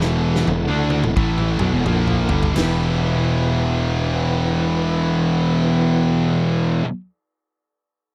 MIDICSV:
0, 0, Header, 1, 6, 480
1, 0, Start_track
1, 0, Key_signature, 1, "minor"
1, 0, Tempo, 695249
1, 1766, Time_signature, 4, 2, 24, 8
1, 5625, End_track
2, 0, Start_track
2, 0, Title_t, "Tonewheel organ"
2, 0, Program_c, 0, 16
2, 0, Note_on_c, 0, 64, 72
2, 0, Note_on_c, 0, 69, 75
2, 0, Note_on_c, 0, 78, 75
2, 1735, Note_off_c, 0, 69, 0
2, 1740, Note_off_c, 0, 64, 0
2, 1751, Note_off_c, 0, 78, 0
2, 1764, Note_on_c, 0, 78, 68
2, 1767, Note_on_c, 0, 71, 61
2, 1768, Note_on_c, 0, 64, 67
2, 4209, Note_off_c, 0, 78, 0
2, 4211, Note_off_c, 0, 64, 0
2, 4211, Note_off_c, 0, 71, 0
2, 5625, End_track
3, 0, Start_track
3, 0, Title_t, "Distorted electric guitar"
3, 0, Program_c, 1, 30
3, 0, Note_on_c, 1, 40, 112
3, 0, Note_on_c, 1, 47, 117
3, 0, Note_on_c, 1, 52, 127
3, 314, Note_off_c, 1, 40, 0
3, 319, Note_off_c, 1, 47, 0
3, 323, Note_on_c, 1, 40, 74
3, 324, Note_off_c, 1, 52, 0
3, 327, Note_on_c, 1, 47, 70
3, 464, Note_off_c, 1, 47, 0
3, 467, Note_on_c, 1, 50, 85
3, 473, Note_off_c, 1, 40, 0
3, 475, Note_on_c, 1, 57, 96
3, 477, Note_on_c, 1, 62, 105
3, 706, Note_off_c, 1, 50, 0
3, 709, Note_off_c, 1, 57, 0
3, 711, Note_off_c, 1, 62, 0
3, 712, Note_on_c, 1, 40, 79
3, 718, Note_on_c, 1, 47, 83
3, 799, Note_off_c, 1, 47, 0
3, 801, Note_on_c, 1, 45, 97
3, 805, Note_off_c, 1, 40, 0
3, 805, Note_on_c, 1, 52, 103
3, 810, Note_on_c, 1, 57, 97
3, 1092, Note_off_c, 1, 45, 0
3, 1094, Note_off_c, 1, 52, 0
3, 1096, Note_off_c, 1, 57, 0
3, 1097, Note_on_c, 1, 47, 99
3, 1106, Note_on_c, 1, 54, 95
3, 1186, Note_off_c, 1, 47, 0
3, 1191, Note_off_c, 1, 54, 0
3, 1192, Note_on_c, 1, 40, 92
3, 1198, Note_on_c, 1, 47, 99
3, 1277, Note_off_c, 1, 47, 0
3, 1280, Note_off_c, 1, 40, 0
3, 1280, Note_on_c, 1, 46, 88
3, 1286, Note_on_c, 1, 53, 98
3, 1291, Note_on_c, 1, 58, 101
3, 1571, Note_off_c, 1, 46, 0
3, 1574, Note_off_c, 1, 53, 0
3, 1577, Note_off_c, 1, 58, 0
3, 1577, Note_on_c, 1, 43, 89
3, 1581, Note_on_c, 1, 50, 91
3, 1587, Note_on_c, 1, 55, 93
3, 1751, Note_off_c, 1, 50, 0
3, 1754, Note_on_c, 1, 52, 109
3, 1758, Note_off_c, 1, 43, 0
3, 1762, Note_off_c, 1, 55, 0
3, 1767, Note_on_c, 1, 59, 102
3, 1776, Note_on_c, 1, 64, 107
3, 1783, Note_on_c, 1, 67, 116
3, 4709, Note_off_c, 1, 52, 0
3, 4721, Note_off_c, 1, 59, 0
3, 4726, Note_off_c, 1, 64, 0
3, 4729, Note_off_c, 1, 67, 0
3, 5625, End_track
4, 0, Start_track
4, 0, Title_t, "Distorted electric guitar"
4, 0, Program_c, 2, 30
4, 1763, Note_on_c, 2, 40, 96
4, 1776, Note_on_c, 2, 47, 116
4, 1789, Note_on_c, 2, 52, 111
4, 4717, Note_off_c, 2, 40, 0
4, 4726, Note_off_c, 2, 47, 0
4, 4733, Note_off_c, 2, 52, 0
4, 5625, End_track
5, 0, Start_track
5, 0, Title_t, "Fingered electric bass"
5, 0, Program_c, 3, 33
5, 0, Note_on_c, 3, 28, 97
5, 300, Note_off_c, 3, 28, 0
5, 330, Note_on_c, 3, 28, 92
5, 467, Note_off_c, 3, 28, 0
5, 478, Note_on_c, 3, 38, 101
5, 700, Note_off_c, 3, 38, 0
5, 720, Note_on_c, 3, 28, 79
5, 801, Note_off_c, 3, 28, 0
5, 805, Note_on_c, 3, 33, 94
5, 1082, Note_off_c, 3, 33, 0
5, 1108, Note_on_c, 3, 35, 85
5, 1191, Note_off_c, 3, 35, 0
5, 1198, Note_on_c, 3, 28, 106
5, 1282, Note_off_c, 3, 28, 0
5, 1288, Note_on_c, 3, 34, 98
5, 1563, Note_off_c, 3, 34, 0
5, 1585, Note_on_c, 3, 31, 97
5, 1754, Note_off_c, 3, 31, 0
5, 1768, Note_on_c, 3, 28, 87
5, 4695, Note_off_c, 3, 28, 0
5, 5625, End_track
6, 0, Start_track
6, 0, Title_t, "Drums"
6, 9, Note_on_c, 9, 38, 64
6, 78, Note_off_c, 9, 38, 0
6, 247, Note_on_c, 9, 38, 65
6, 316, Note_off_c, 9, 38, 0
6, 327, Note_on_c, 9, 48, 80
6, 396, Note_off_c, 9, 48, 0
6, 622, Note_on_c, 9, 48, 86
6, 691, Note_off_c, 9, 48, 0
6, 715, Note_on_c, 9, 47, 94
6, 784, Note_off_c, 9, 47, 0
6, 806, Note_on_c, 9, 36, 112
6, 875, Note_off_c, 9, 36, 0
6, 952, Note_on_c, 9, 47, 82
6, 1021, Note_off_c, 9, 47, 0
6, 1099, Note_on_c, 9, 45, 101
6, 1168, Note_off_c, 9, 45, 0
6, 1283, Note_on_c, 9, 45, 97
6, 1352, Note_off_c, 9, 45, 0
6, 1431, Note_on_c, 9, 43, 80
6, 1500, Note_off_c, 9, 43, 0
6, 1580, Note_on_c, 9, 43, 114
6, 1650, Note_off_c, 9, 43, 0
6, 1675, Note_on_c, 9, 43, 112
6, 1744, Note_off_c, 9, 43, 0
6, 1765, Note_on_c, 9, 49, 83
6, 1780, Note_on_c, 9, 38, 99
6, 1834, Note_off_c, 9, 49, 0
6, 1849, Note_off_c, 9, 38, 0
6, 5625, End_track
0, 0, End_of_file